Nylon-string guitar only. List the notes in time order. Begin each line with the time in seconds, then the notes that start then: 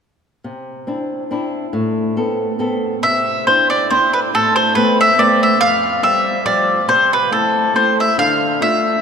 0.44 C3
0.87 C4 D4 E4
1.31 C4 D4 E4
1.73 A2
2.17 B3 C4 A4
2.59 B3 C4 A4
3.03 C3
3.47 C4 D4 E4
3.91 C4 D4 E4
4.34 A2
4.76 A3 B3 C4
5.18 A3 B3 C4
5.61 F2
6.03 F3 G3 C4
6.45 F3 G3 C4
6.88 C3
7.31 A3 C4 E4
7.74 A3 C4 E4
8.18 D3
8.60 A3 D4 F4